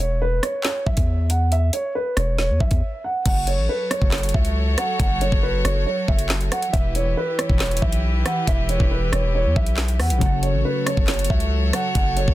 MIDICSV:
0, 0, Header, 1, 6, 480
1, 0, Start_track
1, 0, Tempo, 434783
1, 1675, Time_signature, 4, 2, 24, 8
1, 13623, End_track
2, 0, Start_track
2, 0, Title_t, "Grand piano"
2, 0, Program_c, 0, 0
2, 2, Note_on_c, 0, 73, 84
2, 204, Note_off_c, 0, 73, 0
2, 239, Note_on_c, 0, 71, 101
2, 442, Note_off_c, 0, 71, 0
2, 477, Note_on_c, 0, 73, 80
2, 681, Note_off_c, 0, 73, 0
2, 714, Note_on_c, 0, 73, 86
2, 919, Note_off_c, 0, 73, 0
2, 952, Note_on_c, 0, 76, 80
2, 1405, Note_off_c, 0, 76, 0
2, 1437, Note_on_c, 0, 78, 82
2, 1641, Note_off_c, 0, 78, 0
2, 1680, Note_on_c, 0, 76, 90
2, 1883, Note_off_c, 0, 76, 0
2, 1915, Note_on_c, 0, 73, 84
2, 2119, Note_off_c, 0, 73, 0
2, 2155, Note_on_c, 0, 71, 89
2, 2360, Note_off_c, 0, 71, 0
2, 2390, Note_on_c, 0, 73, 77
2, 2597, Note_off_c, 0, 73, 0
2, 2639, Note_on_c, 0, 73, 82
2, 2842, Note_off_c, 0, 73, 0
2, 2875, Note_on_c, 0, 76, 80
2, 3326, Note_off_c, 0, 76, 0
2, 3360, Note_on_c, 0, 78, 77
2, 3562, Note_off_c, 0, 78, 0
2, 3594, Note_on_c, 0, 78, 96
2, 3799, Note_off_c, 0, 78, 0
2, 3836, Note_on_c, 0, 73, 85
2, 4040, Note_off_c, 0, 73, 0
2, 4075, Note_on_c, 0, 71, 87
2, 4279, Note_off_c, 0, 71, 0
2, 4314, Note_on_c, 0, 73, 78
2, 4519, Note_off_c, 0, 73, 0
2, 4554, Note_on_c, 0, 73, 82
2, 4759, Note_off_c, 0, 73, 0
2, 4794, Note_on_c, 0, 76, 77
2, 5246, Note_off_c, 0, 76, 0
2, 5281, Note_on_c, 0, 78, 86
2, 5483, Note_off_c, 0, 78, 0
2, 5516, Note_on_c, 0, 78, 100
2, 5720, Note_off_c, 0, 78, 0
2, 5758, Note_on_c, 0, 73, 87
2, 5961, Note_off_c, 0, 73, 0
2, 5996, Note_on_c, 0, 71, 93
2, 6200, Note_off_c, 0, 71, 0
2, 6234, Note_on_c, 0, 73, 86
2, 6439, Note_off_c, 0, 73, 0
2, 6474, Note_on_c, 0, 73, 80
2, 6679, Note_off_c, 0, 73, 0
2, 6718, Note_on_c, 0, 76, 76
2, 7168, Note_off_c, 0, 76, 0
2, 7193, Note_on_c, 0, 78, 89
2, 7398, Note_off_c, 0, 78, 0
2, 7430, Note_on_c, 0, 76, 93
2, 7637, Note_off_c, 0, 76, 0
2, 7682, Note_on_c, 0, 73, 90
2, 7884, Note_off_c, 0, 73, 0
2, 7919, Note_on_c, 0, 71, 101
2, 8122, Note_off_c, 0, 71, 0
2, 8155, Note_on_c, 0, 73, 79
2, 8359, Note_off_c, 0, 73, 0
2, 8396, Note_on_c, 0, 73, 92
2, 8600, Note_off_c, 0, 73, 0
2, 8632, Note_on_c, 0, 76, 82
2, 9085, Note_off_c, 0, 76, 0
2, 9117, Note_on_c, 0, 78, 86
2, 9321, Note_off_c, 0, 78, 0
2, 9363, Note_on_c, 0, 76, 94
2, 9564, Note_off_c, 0, 76, 0
2, 9597, Note_on_c, 0, 73, 88
2, 9800, Note_off_c, 0, 73, 0
2, 9838, Note_on_c, 0, 71, 88
2, 10041, Note_off_c, 0, 71, 0
2, 10072, Note_on_c, 0, 73, 79
2, 10278, Note_off_c, 0, 73, 0
2, 10323, Note_on_c, 0, 73, 84
2, 10524, Note_off_c, 0, 73, 0
2, 10558, Note_on_c, 0, 76, 83
2, 11008, Note_off_c, 0, 76, 0
2, 11042, Note_on_c, 0, 78, 82
2, 11243, Note_off_c, 0, 78, 0
2, 11275, Note_on_c, 0, 78, 93
2, 11479, Note_off_c, 0, 78, 0
2, 11516, Note_on_c, 0, 73, 82
2, 11720, Note_off_c, 0, 73, 0
2, 11757, Note_on_c, 0, 71, 86
2, 11961, Note_off_c, 0, 71, 0
2, 11997, Note_on_c, 0, 73, 79
2, 12201, Note_off_c, 0, 73, 0
2, 12233, Note_on_c, 0, 73, 78
2, 12439, Note_off_c, 0, 73, 0
2, 12475, Note_on_c, 0, 76, 78
2, 12926, Note_off_c, 0, 76, 0
2, 12962, Note_on_c, 0, 78, 84
2, 13163, Note_off_c, 0, 78, 0
2, 13196, Note_on_c, 0, 78, 99
2, 13400, Note_off_c, 0, 78, 0
2, 13437, Note_on_c, 0, 73, 88
2, 13623, Note_off_c, 0, 73, 0
2, 13623, End_track
3, 0, Start_track
3, 0, Title_t, "String section"
3, 0, Program_c, 1, 48
3, 3594, Note_on_c, 1, 73, 89
3, 3595, Note_on_c, 1, 54, 84
3, 3595, Note_on_c, 1, 66, 77
3, 3595, Note_on_c, 1, 69, 76
3, 7396, Note_off_c, 1, 54, 0
3, 7396, Note_off_c, 1, 73, 0
3, 7397, Note_off_c, 1, 66, 0
3, 7397, Note_off_c, 1, 69, 0
3, 7437, Note_on_c, 1, 52, 83
3, 7437, Note_on_c, 1, 64, 78
3, 7437, Note_on_c, 1, 67, 74
3, 7437, Note_on_c, 1, 71, 90
3, 11238, Note_off_c, 1, 52, 0
3, 11238, Note_off_c, 1, 64, 0
3, 11238, Note_off_c, 1, 67, 0
3, 11238, Note_off_c, 1, 71, 0
3, 11275, Note_on_c, 1, 54, 85
3, 11275, Note_on_c, 1, 66, 78
3, 11275, Note_on_c, 1, 69, 78
3, 11275, Note_on_c, 1, 73, 94
3, 13623, Note_off_c, 1, 54, 0
3, 13623, Note_off_c, 1, 66, 0
3, 13623, Note_off_c, 1, 69, 0
3, 13623, Note_off_c, 1, 73, 0
3, 13623, End_track
4, 0, Start_track
4, 0, Title_t, "Harp"
4, 0, Program_c, 2, 46
4, 11236, Note_on_c, 2, 49, 64
4, 11258, Note_on_c, 2, 54, 63
4, 11280, Note_on_c, 2, 57, 63
4, 11303, Note_on_c, 2, 66, 58
4, 11325, Note_on_c, 2, 69, 80
4, 13623, Note_off_c, 2, 49, 0
4, 13623, Note_off_c, 2, 54, 0
4, 13623, Note_off_c, 2, 57, 0
4, 13623, Note_off_c, 2, 66, 0
4, 13623, Note_off_c, 2, 69, 0
4, 13623, End_track
5, 0, Start_track
5, 0, Title_t, "808-style bass"
5, 0, Program_c, 3, 38
5, 0, Note_on_c, 3, 28, 110
5, 446, Note_off_c, 3, 28, 0
5, 955, Note_on_c, 3, 35, 102
5, 1068, Note_off_c, 3, 35, 0
5, 1074, Note_on_c, 3, 40, 104
5, 1881, Note_off_c, 3, 40, 0
5, 2395, Note_on_c, 3, 28, 103
5, 2755, Note_on_c, 3, 40, 96
5, 2772, Note_off_c, 3, 28, 0
5, 2869, Note_off_c, 3, 40, 0
5, 2875, Note_on_c, 3, 35, 104
5, 2988, Note_off_c, 3, 35, 0
5, 2994, Note_on_c, 3, 40, 108
5, 3110, Note_off_c, 3, 40, 0
5, 3595, Note_on_c, 3, 30, 106
5, 3954, Note_on_c, 3, 33, 101
5, 3971, Note_off_c, 3, 30, 0
5, 4069, Note_off_c, 3, 33, 0
5, 4434, Note_on_c, 3, 30, 103
5, 4780, Note_off_c, 3, 30, 0
5, 4795, Note_on_c, 3, 37, 105
5, 5256, Note_off_c, 3, 37, 0
5, 5515, Note_on_c, 3, 30, 113
5, 5861, Note_off_c, 3, 30, 0
5, 5875, Note_on_c, 3, 30, 104
5, 6221, Note_off_c, 3, 30, 0
5, 6234, Note_on_c, 3, 30, 106
5, 6465, Note_off_c, 3, 30, 0
5, 6716, Note_on_c, 3, 30, 102
5, 7176, Note_off_c, 3, 30, 0
5, 7436, Note_on_c, 3, 28, 109
5, 7897, Note_off_c, 3, 28, 0
5, 8274, Note_on_c, 3, 28, 102
5, 8620, Note_off_c, 3, 28, 0
5, 8636, Note_on_c, 3, 35, 103
5, 9096, Note_off_c, 3, 35, 0
5, 9356, Note_on_c, 3, 28, 112
5, 9701, Note_off_c, 3, 28, 0
5, 9715, Note_on_c, 3, 28, 107
5, 10061, Note_off_c, 3, 28, 0
5, 10075, Note_on_c, 3, 28, 108
5, 10435, Note_on_c, 3, 40, 102
5, 10451, Note_off_c, 3, 28, 0
5, 10549, Note_off_c, 3, 40, 0
5, 10556, Note_on_c, 3, 35, 111
5, 11035, Note_on_c, 3, 40, 100
5, 11052, Note_off_c, 3, 35, 0
5, 11157, Note_on_c, 3, 35, 104
5, 11174, Note_off_c, 3, 40, 0
5, 11270, Note_off_c, 3, 35, 0
5, 11275, Note_on_c, 3, 30, 104
5, 11637, Note_on_c, 3, 33, 103
5, 11654, Note_off_c, 3, 30, 0
5, 11750, Note_off_c, 3, 33, 0
5, 12114, Note_on_c, 3, 30, 104
5, 12460, Note_off_c, 3, 30, 0
5, 12475, Note_on_c, 3, 37, 105
5, 12936, Note_off_c, 3, 37, 0
5, 13195, Note_on_c, 3, 30, 113
5, 13541, Note_off_c, 3, 30, 0
5, 13555, Note_on_c, 3, 30, 103
5, 13623, Note_off_c, 3, 30, 0
5, 13623, End_track
6, 0, Start_track
6, 0, Title_t, "Drums"
6, 474, Note_on_c, 9, 37, 94
6, 476, Note_on_c, 9, 42, 84
6, 584, Note_off_c, 9, 37, 0
6, 586, Note_off_c, 9, 42, 0
6, 705, Note_on_c, 9, 39, 90
6, 712, Note_on_c, 9, 42, 76
6, 714, Note_on_c, 9, 38, 113
6, 815, Note_off_c, 9, 39, 0
6, 823, Note_off_c, 9, 42, 0
6, 824, Note_off_c, 9, 38, 0
6, 955, Note_on_c, 9, 36, 98
6, 1065, Note_off_c, 9, 36, 0
6, 1069, Note_on_c, 9, 42, 76
6, 1074, Note_on_c, 9, 36, 90
6, 1179, Note_off_c, 9, 42, 0
6, 1185, Note_off_c, 9, 36, 0
6, 1433, Note_on_c, 9, 42, 87
6, 1544, Note_off_c, 9, 42, 0
6, 1675, Note_on_c, 9, 42, 81
6, 1786, Note_off_c, 9, 42, 0
6, 1911, Note_on_c, 9, 42, 86
6, 2021, Note_off_c, 9, 42, 0
6, 2393, Note_on_c, 9, 37, 97
6, 2395, Note_on_c, 9, 42, 88
6, 2504, Note_off_c, 9, 37, 0
6, 2506, Note_off_c, 9, 42, 0
6, 2633, Note_on_c, 9, 38, 66
6, 2743, Note_off_c, 9, 38, 0
6, 2875, Note_on_c, 9, 36, 96
6, 2985, Note_off_c, 9, 36, 0
6, 2989, Note_on_c, 9, 42, 77
6, 2994, Note_on_c, 9, 36, 87
6, 3099, Note_off_c, 9, 42, 0
6, 3105, Note_off_c, 9, 36, 0
6, 3594, Note_on_c, 9, 49, 108
6, 3595, Note_on_c, 9, 36, 119
6, 3595, Note_on_c, 9, 42, 83
6, 3704, Note_off_c, 9, 49, 0
6, 3705, Note_off_c, 9, 36, 0
6, 3705, Note_off_c, 9, 42, 0
6, 3831, Note_on_c, 9, 42, 89
6, 3942, Note_off_c, 9, 42, 0
6, 4315, Note_on_c, 9, 37, 101
6, 4317, Note_on_c, 9, 42, 87
6, 4425, Note_off_c, 9, 37, 0
6, 4427, Note_off_c, 9, 42, 0
6, 4434, Note_on_c, 9, 36, 96
6, 4544, Note_off_c, 9, 36, 0
6, 4545, Note_on_c, 9, 39, 93
6, 4554, Note_on_c, 9, 38, 116
6, 4554, Note_on_c, 9, 42, 49
6, 4615, Note_off_c, 9, 42, 0
6, 4615, Note_on_c, 9, 42, 62
6, 4655, Note_off_c, 9, 39, 0
6, 4664, Note_off_c, 9, 38, 0
6, 4675, Note_off_c, 9, 42, 0
6, 4675, Note_on_c, 9, 42, 66
6, 4734, Note_off_c, 9, 42, 0
6, 4734, Note_on_c, 9, 42, 78
6, 4795, Note_on_c, 9, 36, 102
6, 4845, Note_off_c, 9, 42, 0
6, 4906, Note_off_c, 9, 36, 0
6, 4909, Note_on_c, 9, 42, 78
6, 5019, Note_off_c, 9, 42, 0
6, 5274, Note_on_c, 9, 37, 92
6, 5274, Note_on_c, 9, 42, 83
6, 5385, Note_off_c, 9, 37, 0
6, 5385, Note_off_c, 9, 42, 0
6, 5515, Note_on_c, 9, 36, 124
6, 5517, Note_on_c, 9, 42, 83
6, 5626, Note_off_c, 9, 36, 0
6, 5627, Note_off_c, 9, 42, 0
6, 5753, Note_on_c, 9, 42, 90
6, 5864, Note_off_c, 9, 42, 0
6, 5875, Note_on_c, 9, 36, 101
6, 5986, Note_off_c, 9, 36, 0
6, 6236, Note_on_c, 9, 37, 98
6, 6238, Note_on_c, 9, 42, 86
6, 6346, Note_off_c, 9, 37, 0
6, 6348, Note_off_c, 9, 42, 0
6, 6716, Note_on_c, 9, 36, 101
6, 6826, Note_off_c, 9, 36, 0
6, 6829, Note_on_c, 9, 42, 77
6, 6940, Note_off_c, 9, 42, 0
6, 6947, Note_on_c, 9, 39, 90
6, 6956, Note_on_c, 9, 38, 112
6, 7058, Note_off_c, 9, 39, 0
6, 7066, Note_off_c, 9, 38, 0
6, 7073, Note_on_c, 9, 42, 70
6, 7183, Note_off_c, 9, 42, 0
6, 7195, Note_on_c, 9, 37, 90
6, 7195, Note_on_c, 9, 42, 81
6, 7306, Note_off_c, 9, 37, 0
6, 7306, Note_off_c, 9, 42, 0
6, 7313, Note_on_c, 9, 42, 78
6, 7424, Note_off_c, 9, 42, 0
6, 7436, Note_on_c, 9, 36, 119
6, 7438, Note_on_c, 9, 42, 85
6, 7546, Note_off_c, 9, 36, 0
6, 7548, Note_off_c, 9, 42, 0
6, 7673, Note_on_c, 9, 42, 89
6, 7784, Note_off_c, 9, 42, 0
6, 8156, Note_on_c, 9, 37, 99
6, 8158, Note_on_c, 9, 42, 89
6, 8266, Note_off_c, 9, 37, 0
6, 8268, Note_off_c, 9, 42, 0
6, 8274, Note_on_c, 9, 36, 94
6, 8385, Note_off_c, 9, 36, 0
6, 8386, Note_on_c, 9, 39, 92
6, 8395, Note_on_c, 9, 38, 115
6, 8395, Note_on_c, 9, 42, 50
6, 8456, Note_off_c, 9, 42, 0
6, 8456, Note_on_c, 9, 42, 60
6, 8496, Note_off_c, 9, 39, 0
6, 8505, Note_off_c, 9, 38, 0
6, 8516, Note_off_c, 9, 42, 0
6, 8516, Note_on_c, 9, 42, 68
6, 8575, Note_off_c, 9, 42, 0
6, 8575, Note_on_c, 9, 42, 80
6, 8636, Note_on_c, 9, 36, 104
6, 8686, Note_off_c, 9, 42, 0
6, 8746, Note_off_c, 9, 36, 0
6, 8749, Note_on_c, 9, 42, 79
6, 8859, Note_off_c, 9, 42, 0
6, 9115, Note_on_c, 9, 37, 90
6, 9115, Note_on_c, 9, 42, 88
6, 9225, Note_off_c, 9, 37, 0
6, 9225, Note_off_c, 9, 42, 0
6, 9356, Note_on_c, 9, 36, 118
6, 9357, Note_on_c, 9, 42, 84
6, 9466, Note_off_c, 9, 36, 0
6, 9467, Note_off_c, 9, 42, 0
6, 9593, Note_on_c, 9, 42, 92
6, 9704, Note_off_c, 9, 42, 0
6, 9715, Note_on_c, 9, 36, 102
6, 9826, Note_off_c, 9, 36, 0
6, 10075, Note_on_c, 9, 37, 105
6, 10077, Note_on_c, 9, 42, 88
6, 10186, Note_off_c, 9, 37, 0
6, 10188, Note_off_c, 9, 42, 0
6, 10556, Note_on_c, 9, 36, 101
6, 10667, Note_off_c, 9, 36, 0
6, 10670, Note_on_c, 9, 42, 81
6, 10780, Note_off_c, 9, 42, 0
6, 10786, Note_on_c, 9, 39, 88
6, 10795, Note_on_c, 9, 38, 112
6, 10897, Note_off_c, 9, 39, 0
6, 10905, Note_off_c, 9, 38, 0
6, 10912, Note_on_c, 9, 42, 71
6, 11022, Note_off_c, 9, 42, 0
6, 11035, Note_on_c, 9, 37, 94
6, 11035, Note_on_c, 9, 46, 60
6, 11146, Note_off_c, 9, 37, 0
6, 11146, Note_off_c, 9, 46, 0
6, 11153, Note_on_c, 9, 42, 81
6, 11263, Note_off_c, 9, 42, 0
6, 11276, Note_on_c, 9, 36, 119
6, 11276, Note_on_c, 9, 42, 81
6, 11386, Note_off_c, 9, 36, 0
6, 11387, Note_off_c, 9, 42, 0
6, 11512, Note_on_c, 9, 42, 92
6, 11623, Note_off_c, 9, 42, 0
6, 11995, Note_on_c, 9, 37, 100
6, 11997, Note_on_c, 9, 42, 89
6, 12105, Note_off_c, 9, 37, 0
6, 12107, Note_off_c, 9, 42, 0
6, 12114, Note_on_c, 9, 36, 98
6, 12225, Note_off_c, 9, 36, 0
6, 12225, Note_on_c, 9, 39, 91
6, 12233, Note_on_c, 9, 38, 116
6, 12234, Note_on_c, 9, 42, 49
6, 12295, Note_off_c, 9, 42, 0
6, 12295, Note_on_c, 9, 42, 61
6, 12335, Note_off_c, 9, 39, 0
6, 12344, Note_off_c, 9, 38, 0
6, 12354, Note_off_c, 9, 42, 0
6, 12354, Note_on_c, 9, 42, 67
6, 12415, Note_off_c, 9, 42, 0
6, 12415, Note_on_c, 9, 42, 79
6, 12476, Note_on_c, 9, 36, 100
6, 12525, Note_off_c, 9, 42, 0
6, 12586, Note_off_c, 9, 36, 0
6, 12588, Note_on_c, 9, 42, 81
6, 12698, Note_off_c, 9, 42, 0
6, 12954, Note_on_c, 9, 37, 92
6, 12954, Note_on_c, 9, 42, 86
6, 13065, Note_off_c, 9, 37, 0
6, 13065, Note_off_c, 9, 42, 0
6, 13195, Note_on_c, 9, 36, 116
6, 13195, Note_on_c, 9, 42, 82
6, 13305, Note_off_c, 9, 42, 0
6, 13306, Note_off_c, 9, 36, 0
6, 13432, Note_on_c, 9, 42, 93
6, 13542, Note_off_c, 9, 42, 0
6, 13555, Note_on_c, 9, 36, 104
6, 13623, Note_off_c, 9, 36, 0
6, 13623, End_track
0, 0, End_of_file